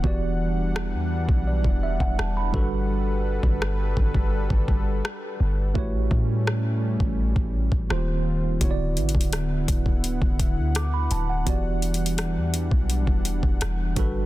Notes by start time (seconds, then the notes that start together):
Already playing: F#5
0.03 E1 E3 G3 B3 D4 F#4 G4, kick
0.07 D5
0.76 cross-stick
0.94 E2
1.29 B1, kick
1.47 D5
1.64 E1, kick
1.83 E5
2.00 E1 F#5, kick
2.19 E1 A5, cross-stick
2.37 B5
2.52 G1 G3 D4 F#4 A4 B4, kick
2.56 B4
3.43 G1, kick
3.62 cross-stick
3.97 G1, kick
4.14 kick
4.50 G1, kick
4.68 kick
5.05 cross-stick
5.40 G1
5.74 A1 G3 A3 C#4 E4 F#4 G4 B4, kick
5.78 C#5
6.11 A2, kick
6.47 cross-stick
7.00 A1, kick
7.36 A1, kick
7.72 A1, kick
7.89 D#1 D#3 A#3 C4 F4 F#4 C5, cross-stick
7.98 G4
8.60 D1 D3 B3 E4 F#4 F#5, kick, closed hi-hat
8.64 C#5
8.71 D5
8.97 A1, closed hi-hat
9.09 closed hi-hat
9.15 D1, kick
9.21 closed hi-hat
9.33 cross-stick, closed hi-hat
9.68 D1, kick, closed hi-hat
9.86 kick
10.04 closed hi-hat
10.22 D1, kick
10.39 kick, closed hi-hat
10.58 D2
10.75 D6, cross-stick, closed hi-hat
10.94 B5
11.11 D1 A5, closed hi-hat
11.30 F#5
11.45 E1 E3 G3 B3 D4 F#4 G4 D5, kick, closed hi-hat
11.82 closed hi-hat
11.94 closed hi-hat
12.06 closed hi-hat
12.18 cross-stick, closed hi-hat
12.37 E2
12.54 closed hi-hat
12.71 B1, kick
12.90 closed hi-hat
13.07 E1, kick
13.25 closed hi-hat
13.43 E1, kick
13.61 E1, cross-stick, closed hi-hat
13.95 G1 G3 D4 F#4 A4 B4, kick, closed hi-hat
13.99 B4